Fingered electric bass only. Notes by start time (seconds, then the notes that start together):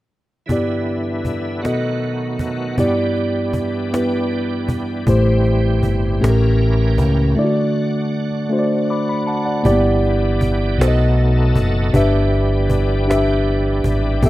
5.08 A1
5.83 G1
6.22 A1
6.99 C#2
9.65 G1
10.78 B1
11.55 F#1
11.94 G1
13.85 G#1
14.22 A1